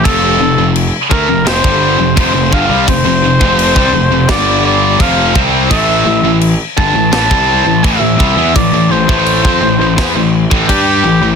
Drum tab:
CC |x---x---x---x---|x---x---x---x---|x---x---x---x---|x---x---x---x---|
SD |--------o-------|--------o-------|--------o-------|--------o-------|
BD |o-----o--o--o-o-|o--o-o--o---o-o-|o-----o--o--o-o-|o--o-o--o--oo---|